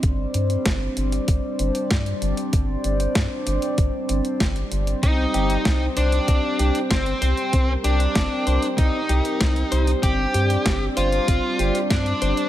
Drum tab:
HH |x-xxx-xxx-xxxxxx|x-xxx-xxx-xxxxxx|x-xxx-xxx-xxxxxx|x-xxx-xxx-xxxxxx|
SD |----o-------o---|----o-------o---|----o-------o---|----o-------o---|
BD |o---o---o---o---|o---o---o---o---|o---o---o---o---|o---o---o---o---|

HH |x-xxx-xxx-xxxxxx|
SD |----o-------o---|
BD |o---o---o---o---|